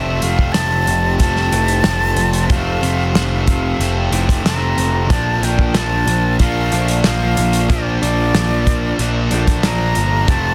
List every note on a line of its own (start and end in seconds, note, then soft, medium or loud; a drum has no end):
0.00 0.19 F1 loud
0.00 1.19 F2 medium
0.00 1.51 F2 medium
0.00 1.18 C3 medium
0.00 1.51 C3 medium
0.00 1.21 F3 medium
0.00 1.21 A3 medium
0.00 1.53 A3 medium
0.00 1.22 C4 loud
0.00 1.52 C4 medium
0.00 0.25 E5 medium
0.22 0.52 F1 medium
0.22 0.54 F5 loud
0.22 closed hi-hat medium
0.39 kick medium
0.52 0.84 F1 medium
0.52 1.19 A5 loud
0.52 snare loud
0.52 closed hi-hat medium
0.87 1.16 F1 medium
0.87 closed hi-hat medium
1.19 1.49 F1 medium
1.19 2.48 F2 medium
1.19 2.49 C3 medium
1.19 2.50 F3 medium
1.19 2.51 A3 medium
1.19 2.50 C4 medium
1.19 2.51 A5 loud
1.19 kick medium
1.19 closed hi-hat medium
1.36 snare soft
1.52 1.81 F1 medium
1.52 1.83 F2 medium
1.52 1.84 C3 medium
1.52 1.84 E3 medium
1.52 1.86 A3 medium
1.52 1.84 C4 medium
1.52 closed hi-hat medium
1.68 closed hi-hat medium
1.84 2.14 F1 medium
1.84 2.48 F2 medium
1.84 2.48 C3 medium
1.84 2.51 A3 medium
1.84 2.49 C4 medium
1.84 snare loud
1.84 closed hi-hat medium
2.16 2.46 F1 medium
2.16 closed hi-hat medium
2.33 closed hi-hat medium
2.49 2.79 F1 loud
2.49 3.78 F2 medium
2.49 4.11 F2 medium
2.49 4.11 C3 medium
2.49 3.78 C3 medium
2.49 3.81 F3 medium
2.49 4.13 A3 medium
2.49 3.81 A3 medium
2.49 4.11 C4 loud
2.49 3.79 C4 loud
2.49 3.46 F5 loud
2.49 kick loud
2.49 closed hi-hat medium
2.83 3.12 F1 medium
2.83 closed hi-hat medium
3.14 3.72 F1 medium
3.14 snare loud
3.14 closed hi-hat medium
3.47 4.08 F5 medium
3.47 kick medium
3.47 closed hi-hat medium
3.79 4.09 F1 medium
3.79 5.08 F2 medium
3.79 5.08 C3 medium
3.79 5.10 F3 medium
3.79 5.11 A3 medium
3.79 5.09 C4 medium
3.79 closed hi-hat medium
4.11 4.41 F1 medium
4.11 4.44 F2 medium
4.11 4.44 C3 medium
4.11 4.44 E3 medium
4.11 4.48 A3 medium
4.11 4.43 C4 medium
4.11 closed hi-hat medium
4.29 kick medium
4.29 closed hi-hat medium
4.44 4.74 F1 medium
4.44 5.09 F2 medium
4.44 5.09 C3 medium
4.44 5.14 A3 medium
4.44 5.11 A#5 medium
4.44 snare loud
4.44 closed hi-hat medium
4.49 5.10 C4 medium
4.78 5.10 F1 medium
4.78 closed hi-hat medium
5.09 5.39 A#1 loud
5.09 6.39 A#2 medium
5.09 6.71 A#2 medium
5.09 6.41 F3 medium
5.09 6.72 F3 medium
5.09 6.42 A#3 medium
5.09 6.43 D4 medium
5.09 6.71 D4 loud
5.09 5.45 A5 medium
5.09 kick loud
5.09 closed hi-hat medium
5.42 5.71 A#1 medium
5.42 5.78 G5 medium
5.42 closed hi-hat medium
5.59 kick medium
5.75 6.04 A#1 medium
5.75 6.39 A5 loud
5.75 snare loud
5.75 closed hi-hat medium
6.07 6.36 A#1 medium
6.07 closed hi-hat medium
6.39 6.69 A#1 medium
6.39 7.68 A#2 medium
6.39 7.70 F3 medium
6.39 7.69 A#3 medium
6.39 7.69 D4 medium
6.39 7.01 F5 loud
6.39 kick medium
6.39 closed hi-hat medium
6.72 7.01 A#1 medium
6.72 7.03 A#2 medium
6.72 7.04 F3 medium
6.72 7.07 A3 medium
6.72 7.03 D4 medium
6.72 closed hi-hat medium
6.88 closed hi-hat medium
7.04 7.34 A#1 medium
7.04 7.67 A#2 medium
7.04 7.68 F3 medium
7.04 7.68 D4 medium
7.04 7.72 F5 medium
7.04 snare loud
7.04 closed hi-hat medium
7.37 7.66 A#1 medium
7.37 closed hi-hat medium
7.53 closed hi-hat medium
7.68 7.98 A#1 medium
7.68 9.29 A#2 medium
7.68 8.97 A#2 medium
7.68 9.33 F3 loud
7.68 9.01 F3 medium
7.68 8.98 A#3 medium
7.68 9.30 D4 loud
7.68 8.00 D5 medium
7.68 kick loud
7.68 closed hi-hat medium
7.73 8.99 D4 medium
8.01 8.31 A#1 medium
8.01 9.32 D5 loud
8.01 closed hi-hat medium
8.35 8.92 A#1 medium
8.35 snare loud
8.35 closed hi-hat medium
8.67 kick medium
8.67 closed hi-hat medium
8.99 9.28 A#1 medium
8.99 10.27 A#2 medium
8.99 10.29 F3 medium
8.99 10.28 A#3 medium
8.99 10.28 D4 medium
8.99 closed hi-hat medium
9.31 9.60 A#1 medium
9.31 9.62 A#2 medium
9.31 9.63 F3 medium
9.31 9.67 A3 medium
9.31 9.62 D4 medium
9.31 closed hi-hat medium
9.47 kick medium
9.47 closed hi-hat medium
9.63 9.93 A#1 medium
9.63 10.26 A#2 medium
9.63 10.54 F3 medium
9.63 10.27 D4 medium
9.63 10.30 A#5 loud
9.63 snare loud
9.63 closed hi-hat medium
9.95 10.25 G1 medium
9.95 closed hi-hat medium
10.28 10.54 F1 loud
10.28 10.54 F2 medium
10.28 10.54 C3 medium
10.28 10.54 F3 medium
10.28 10.54 A3 medium
10.28 10.54 C4 loud
10.28 10.54 C4 medium
10.28 10.54 A5 loud
10.28 kick loud
10.28 closed hi-hat medium